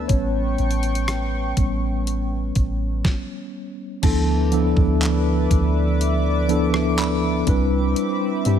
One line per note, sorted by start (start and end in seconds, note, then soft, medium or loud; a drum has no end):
0.00 0.10 B3 medium
0.00 0.12 D4 medium
0.00 0.11 B4 medium
0.00 3.01 B4 medium
0.00 0.11 D5 loud
0.00 3.01 A5 medium
0.08 0.57 A1 loud
0.08 1.56 G3 medium
0.08 1.57 B3 soft
0.08 1.57 C#4 medium
0.08 3.00 C#5 medium
0.08 3.02 G5 medium
0.08 3.02 C#6 medium
0.08 kick loud
0.08 closed hi-hat medium
0.58 1.53 A1 loud
0.58 closed hi-hat soft
0.71 closed hi-hat soft
0.83 closed hi-hat medium
0.95 closed hi-hat medium
1.08 cross-stick loud
1.08 closed hi-hat medium
1.57 2.52 A1 loud
1.57 2.02 G3 soft
1.57 2.03 B3 soft
1.57 2.03 C#4 soft
1.57 kick medium
1.57 closed hi-hat medium
2.07 closed hi-hat medium
2.55 3.03 A1 loud
2.55 kick medium
2.55 closed hi-hat medium
3.05 kick loud
3.05 snare medium
4.02 4.74 D2 loud
4.02 4.42 F3 medium
4.02 4.42 B3 medium
4.02 4.42 D4 medium
4.02 4.43 E4 medium
4.02 4.43 A4 loud
4.02 7.44 B4 medium
4.02 7.44 D5 medium
4.02 7.44 E5 medium
4.02 6.49 A5 medium
4.02 8.59 D6 medium
4.02 kick loud
4.02 closed hi-hat medium
4.02 crash loud
4.51 6.08 F3 medium
4.51 6.08 B3 medium
4.51 6.08 D4 medium
4.51 6.09 E4 medium
4.51 6.09 A4 medium
4.51 closed hi-hat medium
4.77 5.48 D2 loud
4.77 kick medium
5.02 clap loud
5.02 closed hi-hat medium
5.51 7.43 D2 loud
5.51 kick medium
5.51 closed hi-hat medium
6.01 closed hi-hat medium
6.48 7.47 F3 medium
6.48 7.47 B3 medium
6.48 7.47 D4 medium
6.48 7.47 E4 medium
6.48 7.48 A4 loud
6.48 closed hi-hat medium
6.74 cross-stick medium
6.98 7.92 B5 medium
6.98 clap loud
6.98 closed hi-hat medium
7.47 7.95 C2 loud
7.47 8.26 G3 medium
7.47 8.26 C4 medium
7.47 8.59 C4 medium
7.47 8.26 D4 medium
7.47 8.26 E4 medium
7.47 8.27 B4 loud
7.47 8.59 E5 medium
7.47 8.59 B5 medium
7.47 kick loud
7.47 closed hi-hat medium
7.96 closed hi-hat medium
8.45 8.59 G2 loud
8.45 8.59 G3 medium
8.45 8.59 C4 medium
8.45 8.59 D4 medium
8.45 8.59 E4 medium
8.45 8.59 G4 medium
8.45 closed hi-hat medium